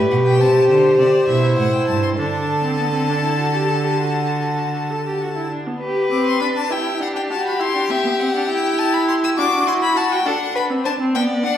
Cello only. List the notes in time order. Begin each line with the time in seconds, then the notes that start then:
Already playing: A2
0.11 B2
0.41 C3
0.70 D3
0.99 C3
1.29 B2
1.58 A2
1.89 G2
2.19 D3